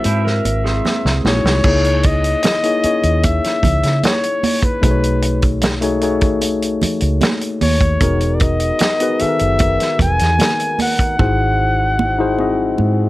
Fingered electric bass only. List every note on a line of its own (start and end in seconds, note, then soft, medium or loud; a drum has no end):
0.05 0.40 G#2 loud
0.45 0.80 G#1 medium
1.05 1.22 C2 medium
1.25 1.42 A#1 medium
1.44 1.62 C2 medium
1.64 2.34 C#2 loud
2.84 muted fingered electric bass stroke medium
3.04 3.38 D#2 medium
3.63 3.81 C#2 medium
3.84 4.01 C#3 loud
4.83 6.78 B1 loud
6.83 muted fingered electric bass stroke soft
7.02 7.19 C#2 loud
7.62 7.96 D#2 loud
8.01 8.71 E1 loud
9.22 muted fingered electric bass stroke soft
9.41 9.76 F#1 medium
9.99 10.17 E1 medium
10.21 10.38 E2 loud
11.19 12.75 G#1 loud
12.79 13.09 G#2 loud